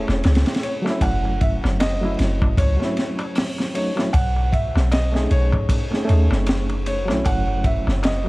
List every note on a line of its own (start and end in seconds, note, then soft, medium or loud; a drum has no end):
0.00 0.78 A3 medium
0.00 0.80 C#4 medium
0.00 0.81 E4 medium
0.00 0.82 G#4 medium
0.00 0.62 C#5 medium
0.08 0.22 E1 loud
0.08 snare soft
0.08 darbuka tek medium
0.24 0.44 C#2 loud
0.24 snare medium
0.24 ride medium
0.24 darbuka tek medium
0.35 snare loud
0.35 ride medium
0.46 snare medium
0.46 ride medium
0.46 darbuka tek soft
0.54 snare medium
0.54 ride medium
0.63 0.72 C#5 medium
0.63 ride medium
0.82 1.95 F#3 loud
0.82 1.96 A3 medium
0.86 1.98 C#4 medium
0.86 snare soft
0.86 darbuka tek medium
0.90 1.99 E4 loud
1.01 1.59 F#1 loud
1.01 1.42 F#5 loud
1.01 kick loud
1.01 ride medium
1.01 darbuka tek medium
1.25 darbuka tek soft
1.41 1.50 E5 medium
1.41 kick loud
1.41 ride medium
1.64 2.16 F#1 medium
1.64 snare soft
1.64 darbuka tek medium
1.80 2.60 D#5 loud
1.80 snare loud
1.80 ride medium
1.80 darbuka tek medium
2.01 2.74 F#3 medium
2.01 2.75 A3 medium
2.01 2.76 C#4 medium
2.01 2.76 E4 loud
2.01 darbuka tek soft
2.19 2.54 F#1 loud
2.19 snare medium
2.19 ride medium
2.42 kick medium
2.42 darbuka tek medium
2.57 2.78 C#2 medium
2.57 3.73 C#5 loud
2.57 kick loud
2.57 ride medium
2.57 darbuka tek medium
2.77 3.69 F#3 medium
2.77 3.70 A3 medium
2.77 darbuka tek soft
2.82 3.72 C#4 medium
2.82 3.73 E4 loud
2.82 snare soft
2.97 snare medium
2.97 ride medium
3.19 ride soft
3.19 darbuka tek medium
3.35 snare loud
3.35 open hi-hat medium
3.35 darbuka tek medium
3.58 snare medium
3.58 darbuka tek soft
3.73 3.91 F#3 medium
3.73 3.92 A3 medium
3.73 3.92 C#4 medium
3.73 3.93 D#4 medium
3.73 4.15 C#5 medium
3.73 ride medium
3.96 4.09 F#3 medium
3.96 4.09 A3 medium
3.96 4.10 C#4 medium
3.96 4.11 E4 loud
3.96 snare medium
3.96 darbuka tek medium
4.13 4.71 B1 loud
4.13 4.53 F#5 loud
4.13 kick loud
4.13 ride medium
4.13 darbuka tek medium
4.36 darbuka tek soft
4.52 4.92 E5 medium
4.52 kick medium
4.52 ride medium
4.76 5.28 B1 medium
4.76 snare medium
4.76 darbuka tek medium
4.92 5.32 D#5 loud
4.92 snare loud
4.92 ride medium
4.92 darbuka tek medium
5.13 5.86 A3 medium
5.13 5.86 C#4 medium
5.13 5.87 D#4 medium
5.13 5.88 G#4 loud
5.13 snare medium
5.13 darbuka tek soft
5.31 5.66 B1 medium
5.31 6.86 C#5 loud
5.31 ride medium
5.52 kick loud
5.52 darbuka tek medium
5.69 kick loud
5.69 ride loud
5.69 darbuka tek medium
5.91 6.04 A3 medium
5.91 6.04 C#4 medium
5.91 6.05 D#4 medium
5.91 snare medium
5.91 darbuka tek soft
5.95 6.06 G#4 medium
6.05 7.02 A3 medium
6.05 7.03 C#4 medium
6.09 6.29 D#2 loud
6.09 7.04 D#4 medium
6.09 7.06 G#4 medium
6.09 ride medium
6.31 7.11 F#1 loud
6.31 snare soft
6.31 darbuka tek medium
6.47 snare loud
6.47 ride medium
6.47 darbuka tek medium
6.69 ride soft
6.69 darbuka tek soft
6.86 7.27 C#5 medium
6.86 ride medium
7.05 8.19 F#3 loud
7.05 8.20 A3 medium
7.05 darbuka tek medium
7.10 7.24 B1 medium
7.10 8.21 C#4 loud
7.10 8.23 E4 loud
7.10 snare soft
7.25 7.83 F#1 loud
7.25 7.66 F#5 loud
7.25 kick loud
7.25 ride medium
7.25 darbuka tek medium
7.48 darbuka tek soft
7.64 8.04 E5 loud
7.64 kick medium
7.64 ride medium
7.87 8.29 F#1 medium
7.87 snare soft
7.87 darbuka tek medium
8.03 8.29 D#5 loud
8.03 snare loud
8.03 ride medium
8.03 darbuka tek medium
8.24 8.29 F#3 medium
8.24 8.29 A3 medium